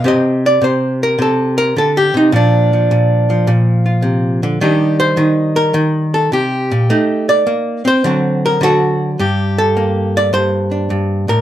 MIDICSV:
0, 0, Header, 1, 2, 480
1, 0, Start_track
1, 0, Key_signature, -2, "minor"
1, 0, Tempo, 571429
1, 35, Time_signature, 4, 2, 24, 8
1, 9587, End_track
2, 0, Start_track
2, 0, Title_t, "Hollow-body jazz guitar"
2, 0, Program_c, 0, 26
2, 35, Note_on_c, 0, 48, 74
2, 44, Note_on_c, 0, 60, 53
2, 49, Note_on_c, 0, 67, 51
2, 52, Note_on_c, 0, 72, 45
2, 66, Note_on_c, 0, 75, 87
2, 378, Note_off_c, 0, 75, 0
2, 388, Note_on_c, 0, 74, 91
2, 507, Note_off_c, 0, 48, 0
2, 517, Note_on_c, 0, 48, 69
2, 529, Note_off_c, 0, 74, 0
2, 534, Note_off_c, 0, 72, 0
2, 537, Note_on_c, 0, 72, 74
2, 853, Note_off_c, 0, 72, 0
2, 866, Note_on_c, 0, 70, 91
2, 986, Note_off_c, 0, 48, 0
2, 996, Note_on_c, 0, 48, 76
2, 1009, Note_off_c, 0, 70, 0
2, 1024, Note_on_c, 0, 69, 84
2, 1322, Note_off_c, 0, 69, 0
2, 1325, Note_on_c, 0, 70, 108
2, 1477, Note_off_c, 0, 48, 0
2, 1478, Note_off_c, 0, 70, 0
2, 1482, Note_on_c, 0, 50, 61
2, 1498, Note_on_c, 0, 69, 87
2, 1648, Note_off_c, 0, 69, 0
2, 1656, Note_off_c, 0, 67, 0
2, 1656, Note_on_c, 0, 67, 89
2, 1795, Note_off_c, 0, 50, 0
2, 1798, Note_on_c, 0, 48, 62
2, 1802, Note_off_c, 0, 60, 0
2, 1807, Note_off_c, 0, 67, 0
2, 1822, Note_on_c, 0, 63, 84
2, 1952, Note_on_c, 0, 46, 88
2, 1955, Note_off_c, 0, 48, 0
2, 1956, Note_off_c, 0, 63, 0
2, 1959, Note_on_c, 0, 53, 52
2, 1981, Note_on_c, 0, 62, 82
2, 2283, Note_off_c, 0, 53, 0
2, 2295, Note_on_c, 0, 53, 42
2, 2436, Note_off_c, 0, 46, 0
2, 2445, Note_on_c, 0, 46, 70
2, 2761, Note_off_c, 0, 53, 0
2, 2771, Note_on_c, 0, 53, 54
2, 2907, Note_off_c, 0, 46, 0
2, 2917, Note_on_c, 0, 46, 78
2, 2929, Note_off_c, 0, 62, 0
2, 3240, Note_on_c, 0, 65, 44
2, 3380, Note_on_c, 0, 48, 59
2, 3714, Note_off_c, 0, 48, 0
2, 3722, Note_on_c, 0, 50, 70
2, 3857, Note_off_c, 0, 65, 0
2, 3858, Note_off_c, 0, 46, 0
2, 3871, Note_off_c, 0, 50, 0
2, 3875, Note_on_c, 0, 51, 84
2, 3876, Note_off_c, 0, 53, 0
2, 3879, Note_on_c, 0, 55, 50
2, 3879, Note_on_c, 0, 62, 58
2, 3884, Note_on_c, 0, 63, 57
2, 3894, Note_on_c, 0, 67, 54
2, 4193, Note_off_c, 0, 67, 0
2, 4197, Note_on_c, 0, 72, 95
2, 4333, Note_off_c, 0, 51, 0
2, 4341, Note_off_c, 0, 63, 0
2, 4343, Note_on_c, 0, 51, 74
2, 4351, Note_on_c, 0, 63, 52
2, 4668, Note_off_c, 0, 72, 0
2, 4672, Note_on_c, 0, 70, 98
2, 4812, Note_off_c, 0, 51, 0
2, 4822, Note_on_c, 0, 51, 84
2, 5155, Note_off_c, 0, 70, 0
2, 5158, Note_on_c, 0, 69, 90
2, 5305, Note_off_c, 0, 51, 0
2, 5309, Note_on_c, 0, 48, 59
2, 5313, Note_off_c, 0, 69, 0
2, 5320, Note_on_c, 0, 67, 86
2, 5637, Note_off_c, 0, 48, 0
2, 5640, Note_on_c, 0, 46, 70
2, 5772, Note_off_c, 0, 63, 0
2, 5775, Note_off_c, 0, 55, 0
2, 5776, Note_off_c, 0, 62, 0
2, 5794, Note_off_c, 0, 46, 0
2, 5796, Note_on_c, 0, 57, 83
2, 5801, Note_on_c, 0, 63, 57
2, 6120, Note_off_c, 0, 67, 0
2, 6123, Note_on_c, 0, 74, 98
2, 6268, Note_off_c, 0, 57, 0
2, 6272, Note_on_c, 0, 58, 69
2, 6590, Note_off_c, 0, 58, 0
2, 6593, Note_on_c, 0, 60, 75
2, 6600, Note_off_c, 0, 74, 0
2, 6615, Note_on_c, 0, 72, 106
2, 6737, Note_off_c, 0, 63, 0
2, 6749, Note_off_c, 0, 60, 0
2, 6755, Note_on_c, 0, 50, 77
2, 6761, Note_on_c, 0, 54, 57
2, 6766, Note_on_c, 0, 60, 59
2, 6772, Note_on_c, 0, 66, 55
2, 7086, Note_off_c, 0, 72, 0
2, 7103, Note_on_c, 0, 70, 99
2, 7221, Note_off_c, 0, 50, 0
2, 7231, Note_on_c, 0, 50, 73
2, 7240, Note_off_c, 0, 66, 0
2, 7244, Note_off_c, 0, 70, 0
2, 7250, Note_on_c, 0, 66, 103
2, 7258, Note_on_c, 0, 69, 91
2, 7647, Note_off_c, 0, 69, 0
2, 7692, Note_off_c, 0, 50, 0
2, 7697, Note_off_c, 0, 54, 0
2, 7699, Note_off_c, 0, 60, 0
2, 7720, Note_off_c, 0, 66, 0
2, 7723, Note_on_c, 0, 43, 77
2, 7730, Note_on_c, 0, 67, 76
2, 8051, Note_on_c, 0, 69, 82
2, 8204, Note_on_c, 0, 58, 56
2, 8524, Note_off_c, 0, 67, 0
2, 8542, Note_on_c, 0, 74, 105
2, 8667, Note_off_c, 0, 43, 0
2, 8676, Note_on_c, 0, 43, 60
2, 8679, Note_off_c, 0, 74, 0
2, 8682, Note_on_c, 0, 72, 92
2, 9000, Note_on_c, 0, 62, 41
2, 9004, Note_off_c, 0, 69, 0
2, 9147, Note_off_c, 0, 43, 0
2, 9158, Note_on_c, 0, 43, 56
2, 9474, Note_off_c, 0, 43, 0
2, 9477, Note_on_c, 0, 45, 62
2, 9482, Note_off_c, 0, 72, 0
2, 9486, Note_on_c, 0, 70, 92
2, 9587, Note_off_c, 0, 45, 0
2, 9587, Note_off_c, 0, 58, 0
2, 9587, Note_off_c, 0, 62, 0
2, 9587, Note_off_c, 0, 70, 0
2, 9587, End_track
0, 0, End_of_file